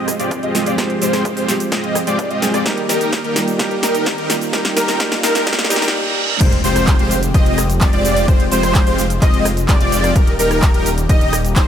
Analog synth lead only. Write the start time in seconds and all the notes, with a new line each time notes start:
0.20 D5
0.43 D#5
0.67 D5
0.78 C5
1.02 C5
1.37 C5
1.72 D#5
2.07 D5
2.30 D#5
2.54 D5
2.66 A#4
2.89 A#4
3.24 A#4
3.59 A#4
3.83 A#4
4.18 A#4
4.53 A#4
4.77 A#4
5.00 A#4
5.23 A#4
5.47 A#4
5.70 A#4
6.41 C5
6.64 C5
6.99 C5
7.34 D#5
7.81 D5
7.93 D5
8.28 C5
8.52 C5
8.87 C5
9.22 D#5
9.69 D5
9.81 D5
10.16 A#4
10.39 A#4
10.74 A#4
11.10 D#5
11.56 C5